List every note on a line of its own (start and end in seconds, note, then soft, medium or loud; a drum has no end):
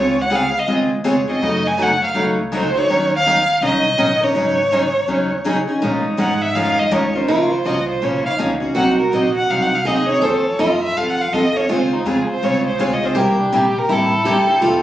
0.00 0.53 C#2 medium
0.00 0.16 C#3 medium
0.00 0.16 G#3 medium
0.00 0.16 C4 medium
0.00 0.16 F4 medium
0.00 0.16 G#4 medium
0.00 0.23 C#5 medium
0.21 0.37 F#5 medium
0.30 0.42 C#3 medium
0.30 0.42 G#3 medium
0.30 0.42 C4 medium
0.30 0.42 F4 medium
0.30 0.42 G#4 medium
0.35 0.60 F5 medium
0.59 0.71 D#5 medium
0.67 0.99 D#2 medium
0.67 0.89 C#3 medium
0.67 0.89 G#3 medium
0.67 0.89 C4 medium
0.67 0.89 F4 medium
0.67 0.89 G#4 medium
1.04 1.36 F2 medium
1.04 1.16 C#3 medium
1.04 1.16 G#3 medium
1.04 1.16 C4 medium
1.04 1.16 F4 medium
1.04 1.16 G#4 medium
1.04 1.27 C#5 medium
1.28 1.42 C4 soft
1.28 1.42 F4 soft
1.28 1.41 G#4 medium
1.28 1.69 D#5 medium
1.42 2.01 F#2 medium
1.42 1.63 C#3 medium
1.42 1.63 F#3 medium
1.42 1.63 A3 medium
1.42 1.63 D#4 medium
1.42 1.63 F#4 medium
1.67 1.84 G#5 medium
1.78 1.89 C#3 medium
1.78 1.89 F#3 medium
1.78 1.90 A3 medium
1.78 1.90 D#4 medium
1.78 1.90 F#4 medium
1.83 2.03 F#5 medium
2.04 2.16 F5 medium
2.14 2.74 C#2 medium
2.14 2.36 C#3 medium
2.14 2.36 F#3 medium
2.14 2.36 A3 medium
2.14 2.36 D#4 medium
2.14 2.36 F#4 medium
2.52 2.63 C#3 medium
2.52 2.63 F#3 medium
2.52 2.63 A3 medium
2.52 2.64 D#4 medium
2.52 2.64 F#4 medium
2.56 2.79 C5 medium
2.75 2.89 A3 soft
2.75 2.89 D#4 soft
2.75 2.88 F#4 medium
2.75 3.13 C#5 loud
2.88 3.47 D#2 medium
2.88 3.10 D#3 medium
2.88 3.10 F#3 medium
2.88 3.10 C#4 medium
2.88 3.10 D#4 medium
2.88 3.11 A#4 medium
3.16 3.61 F5 loud
3.26 3.37 D#3 medium
3.26 3.37 F#3 medium
3.26 3.37 C#4 medium
3.26 3.37 D#4 medium
3.26 3.37 A#4 medium
3.61 3.93 C2 medium
3.61 3.83 D#3 medium
3.61 3.83 F#3 medium
3.61 3.83 C#4 medium
3.61 3.83 D#4 medium
3.61 3.83 A#4 medium
3.65 4.25 D#5 loud
3.97 4.30 A#1 medium
3.97 4.09 D#3 medium
3.97 4.09 F#3 medium
3.97 4.10 C#4 medium
3.97 4.10 D#4 loud
3.97 4.10 A#4 medium
4.21 4.35 C#4 soft
4.21 4.35 D#4 medium
4.21 4.35 A#4 medium
4.21 5.47 C#5 medium
4.35 4.94 G#1 medium
4.35 4.56 C#3 medium
4.35 4.56 F#3 medium
4.35 4.56 C#4 medium
4.35 4.57 D#4 medium
4.35 4.56 G#4 medium
4.71 4.83 C#3 medium
4.71 4.83 F#3 medium
4.71 4.83 C#4 medium
4.71 4.83 D#4 medium
4.71 4.84 G#4 medium
5.07 5.67 D#2 medium
5.07 5.29 C#3 medium
5.07 5.29 F#3 medium
5.07 5.29 C#4 medium
5.07 5.30 D#4 medium
5.07 5.30 G#4 medium
5.44 5.56 C#3 medium
5.44 5.56 F#3 medium
5.44 5.56 C#4 medium
5.44 5.57 D#4 medium
5.44 5.57 G#4 medium
5.67 5.82 C#4 soft
5.67 5.82 D#4 soft
5.67 5.81 G#4 medium
5.81 6.03 A#2 medium
5.81 6.03 F3 medium
5.81 6.03 G#3 medium
5.81 6.03 C#4 medium
5.81 7.33 D#4 medium
5.81 6.03 F4 medium
5.81 6.04 A#4 medium
6.04 muted upright bass stroke soft
6.17 6.54 G#2 medium
6.17 6.29 F3 medium
6.17 6.30 G#3 medium
6.17 6.30 C#4 medium
6.17 6.30 F4 medium
6.17 6.30 A#4 medium
6.17 6.43 F#5 medium
6.42 6.57 E5 medium
6.55 6.90 F2 medium
6.55 6.76 F3 medium
6.55 6.76 G#3 medium
6.55 6.77 C#4 medium
6.55 6.77 F4 medium
6.55 6.77 A#4 medium
6.55 6.80 F5 medium
6.79 6.95 D#5 medium
6.91 7.27 D#2 medium
6.91 7.03 F3 medium
6.91 7.03 G#3 medium
6.91 7.03 C#4 medium
6.91 7.03 F4 medium
6.91 7.03 A#4 medium
6.91 7.18 C#5 medium
7.13 7.28 C#4 soft
7.13 7.29 F4 soft
7.13 7.28 A#4 soft
7.13 7.32 C5 medium
7.28 7.65 C#2 medium
7.28 7.50 C#3 medium
7.28 7.50 F3 medium
7.28 7.50 A#3 medium
7.28 7.50 C#4 medium
7.28 8.30 F4 medium
7.28 7.50 F#4 medium
7.28 7.53 A#4 medium
7.51 7.67 C5 medium
7.65 8.01 C2 medium
7.65 7.77 C#3 medium
7.65 7.77 F3 medium
7.65 7.77 A#3 medium
7.65 7.77 C#4 medium
7.65 7.77 F#4 medium
7.65 7.88 D#5 medium
7.89 8.05 C5 medium
8.02 8.23 A#1 medium
8.02 8.23 C#3 medium
8.02 8.23 F3 medium
8.02 8.23 A#3 medium
8.02 8.24 C#4 medium
8.02 8.24 F#4 medium
8.02 8.25 C#5 medium
8.25 8.34 F5 medium
8.25 muted upright bass stroke soft
8.30 8.74 D#4 medium
8.38 8.75 C#2 medium
8.38 8.50 C#3 medium
8.38 8.50 F3 medium
8.38 8.50 A#3 medium
8.38 8.51 C#4 medium
8.38 8.51 F#4 medium
8.60 8.76 A#3 soft
8.60 8.75 C#4 soft
8.60 8.75 F#4 medium
8.75 9.12 C2 medium
8.75 8.96 C3 medium
8.75 8.97 F#3 medium
8.75 8.97 C4 medium
8.75 8.97 D#4 medium
8.75 9.85 F#4 medium
8.75 8.97 F#5 medium
8.99 9.15 A#4 medium
9.12 9.48 A#1 medium
9.12 9.24 C3 medium
9.12 9.24 F#3 medium
9.12 9.24 C4 medium
9.12 9.24 D#4 medium
9.12 9.35 D#5 medium
9.35 9.52 F#5 loud
9.49 9.85 C2 medium
9.49 9.70 C3 medium
9.49 9.71 F#3 medium
9.49 9.71 C4 medium
9.49 9.71 D#4 medium
9.49 9.64 F5 medium
9.63 9.77 F#5 medium
9.75 9.88 F5 medium
9.85 10.21 D#2 medium
9.85 9.97 C3 medium
9.85 9.98 F#3 medium
9.85 9.98 C4 medium
9.85 9.98 D#4 medium
9.85 10.20 G#4 medium
9.85 10.09 D#5 medium
10.08 10.23 F#3 soft
10.08 10.23 C4 soft
10.08 10.22 D#4 medium
10.08 10.25 C#5 medium
10.22 10.58 F2 medium
10.22 10.44 F3 medium
10.22 10.44 C4 medium
10.22 10.45 F4 medium
10.22 10.45 A4 medium
10.22 10.45 C5 medium
10.46 10.62 C#5 medium
10.59 10.95 F#2 medium
10.59 10.70 F3 medium
10.59 10.71 C4 medium
10.59 10.71 F4 medium
10.59 10.71 A4 medium
10.59 10.82 D#5 medium
10.83 10.99 E5 medium
10.96 11.32 F2 medium
10.96 11.17 F3 medium
10.96 11.18 C4 medium
10.96 11.18 F4 medium
10.96 11.18 A4 medium
10.96 11.11 F5 medium
11.10 11.23 F#5 medium
11.21 11.34 F5 medium
11.33 11.68 D#2 medium
11.33 11.44 F3 medium
11.33 11.44 C4 medium
11.33 11.45 F4 medium
11.33 11.45 A4 medium
11.33 11.58 D#5 medium
11.54 11.68 C4 soft
11.54 11.69 F4 soft
11.54 11.69 A4 medium
11.54 11.73 C#5 medium
11.69 12.05 C#2 medium
11.69 11.90 C#3 medium
11.69 11.90 G#3 medium
11.69 11.90 C4 medium
11.69 11.91 F4 medium
11.69 11.91 G#4 medium
11.69 11.94 C5 medium
11.93 12.09 D#4 medium
12.05 12.27 F2 medium
12.05 12.17 C#3 medium
12.05 12.17 G#3 medium
12.05 12.17 C4 medium
12.05 12.18 F4 medium
12.05 12.18 G#4 medium
12.05 12.29 G#4 medium
12.28 12.46 C5 medium
12.28 muted upright bass stroke soft
12.42 12.78 C2 medium
12.42 12.64 C#3 medium
12.42 12.64 G#3 medium
12.42 12.64 C4 medium
12.42 12.64 F4 medium
12.42 12.64 G#4 medium
12.42 12.66 C#5 medium
12.67 12.82 C5 medium
12.78 13.14 C#2 medium
12.78 12.90 C#3 medium
12.78 12.91 G#3 medium
12.78 12.91 C4 medium
12.78 12.91 F4 medium
12.78 12.91 G#4 medium
12.78 12.95 C#5 medium
12.93 13.07 D#5 medium
13.02 13.15 C4 soft
13.02 13.16 F4 medium
13.02 13.16 G#4 medium
13.02 13.20 C5 medium
13.15 13.51 C2 medium
13.15 13.37 C3 medium
13.15 13.37 G3 medium
13.15 13.37 A#3 medium
13.15 13.37 E4 medium
13.15 13.37 G4 medium
13.15 13.40 A#4 medium
13.41 13.58 D4 medium
13.52 13.88 A#1 medium
13.52 13.64 C3 medium
13.52 13.64 G3 medium
13.52 13.64 A#3 medium
13.52 13.64 E4 medium
13.52 13.64 G4 medium
13.52 13.80 G4 medium
13.78 13.94 A#4 medium
13.89 14.25 A1 medium
13.89 14.10 C3 medium
13.89 14.10 G3 medium
13.89 14.10 A#3 medium
13.89 14.11 E4 medium
13.89 14.11 G4 medium
13.89 14.82 A4 medium
14.26 14.61 G1 medium
14.26 14.37 C3 medium
14.26 14.37 G3 medium
14.26 14.37 A#3 loud
14.26 14.37 E4 medium
14.26 14.37 G4 loud
14.48 14.63 A#3 soft
14.48 14.62 E4 medium
14.48 14.62 G4 medium
14.63 14.82 F1 medium
14.63 14.82 F3 medium
14.63 14.82 C4 medium
14.63 14.82 F4 medium
14.63 14.82 A4 medium